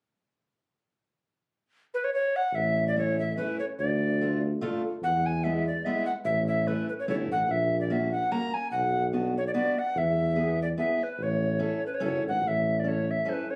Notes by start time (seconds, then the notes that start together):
1.94 B4
2.04 C#5
2.14 C#5
2.36 F#5
2.52 A1 E5
2.87 D5
2.96 A3 C#4 E4 C#5
3.19 E5
3.37 A3 C#4 E4 B4
3.59 C#5
3.79 D2 D5
4.21 A3 D4 F4
4.61 A3 D4 F4
5.02 E2 F#5
5.26 G#5
5.44 G#3 B3 E4 E5
5.67 D5
5.85 G#3 B3 E4 E5
6.05 F#5
6.25 A1 E5
6.47 E5
6.67 A3 C#4 E4 B4
6.89 B4
6.99 C#5
7.07 G1 A3 C#4 E4 C#5
7.29 A1 F#5
7.44 A#1 F#5
7.51 E5
7.80 D5
7.90 A#3 C#4 F#4 E5
8.12 F#5
8.32 A#3 C#4 F#4 A#5
8.54 G#5
8.71 B1 F#5
9.13 B3 D4 F#4
9.37 C#5
9.47 D5
9.54 B3 D4 F#4 D5
9.79 F#5
9.96 E2 E5
10.36 B3 E4 G#4
10.62 D5
10.78 B3 E4 G#4 E5
11.03 B4
11.19 A1
11.23 C#5
11.59 C#4 E4 A4
11.86 B4
11.94 C#5
12.00 F#1 C#4 E4 A4
12.05 C#5
12.23 G#1
12.28 F#5
12.42 A1
12.48 E5
12.80 D5
12.84 C#4 E4 A4 C#5
13.11 E5
13.25 C#4 E4 A4 C5
13.33 B4
13.50 C#5